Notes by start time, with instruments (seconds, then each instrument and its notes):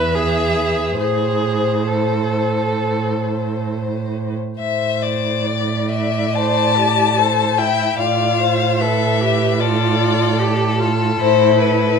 Already playing: cello E2, violin B4 E5, viola B4
0.14 viola G#4, violin B4
1.00 cello A2, viola G#4, violin C5
1.87 viola A4, violin C5
4.60 cello A2, violin C5 E5
5.03 violin D5
5.46 violin D5
5.91 violin E5
6.35 viola C5, violin A5
6.77 viola G4
7.17 viola A4, violin C5
7.58 viola E4, violin E5 G5
7.99 cello A2, viola F4, violin D5 F5
8.40 violin C5
8.80 viola A4, violin B4 E5
9.21 viola G4
9.60 viola F4, violin A4 D5
10.40 viola G4
10.80 viola F4
11.19 cello A2, viola E4, violin C5
11.61 violin B4